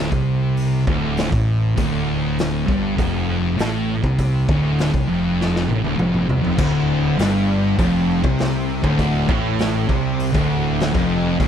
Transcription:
Already playing: D2
0.12 C2 C3, kick
0.57 open hi-hat
0.87 D1 D2, kick
1.17 snare, open hi-hat
1.31 A1 A2, kick
1.76 D1 D2, kick, open hi-hat
2.38 snare, open hi-hat
2.66 G1 G2, kick
2.97 F1 F2, kick, open hi-hat
3.57 A1 A2, snare, open hi-hat
4.04 C2 C3, kick
4.19 kick, open hi-hat
4.48 D1 D2, kick
4.79 snare, open hi-hat
4.94 C2 C3, kick
5.09 F1 F2
5.41 snare
5.56 snare
5.69 A1 A2, high tom
5.83 D1 D2, high tom
5.99 F1 F2, mid tom
6.14 mid tom
6.28 C2 C3, floor tom
6.42 F1 F2, floor tom
6.57 D1 D2, kick, crash
7.17 G1 G2, snare, open hi-hat
7.78 F1 F2, kick, open hi-hat
8.23 C2 C3, kick
8.39 snare, open hi-hat
8.82 D1 D2, kick
8.99 kick, open hi-hat
9.28 A1 A2, kick
9.59 snare, open hi-hat
9.87 C2 C3, kick
10.20 open hi-hat
10.32 D1 D2, kick
10.80 snare, open hi-hat
10.94 F1 F2, kick
11.40 D1 D2, kick, open hi-hat

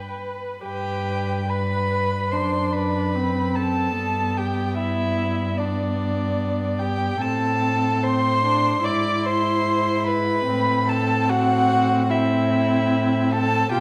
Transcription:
Already playing: G2 B4 G5
0.19 B4
0.64 G2 G4 B4 G5
1.49 B4 B5
2.32 F#2 D4 C5 C6
2.72 B4 B5
3.15 C4
3.55 A4 A5
3.97 G2 B3
4.37 G4 G5
4.77 E4 E5
5.57 B3 D4 D5
6.79 G4 G5
7.21 A2 C4 A4 A5
8.04 C4 C5 C6
8.44 D4
8.84 G#2 E4 D5 D6
9.26 C5 C6
10.07 B4 B5
10.48 A2 C4
10.88 A4 A5
11.30 F#4 F#5
12.10 C4 E4 E5
13.32 A4 A5
13.72 B2 F4 G4 G5

